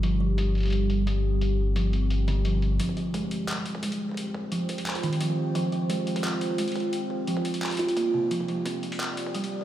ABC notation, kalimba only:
X:1
M:4/4
L:1/8
Q:"Swing 16ths" 1/4=174
K:Fdor
V:1 name="Kalimba" clef=bass
F, F, G, z3 G,2- | G,2 F, z2 D, F, z | F, F, A, z3 A,2- | A,2 F, z2 E, F, z |
F, F, A, z3 A,2- | A,2 F, z2 F B, C, | F, F, C z3 G,2 |]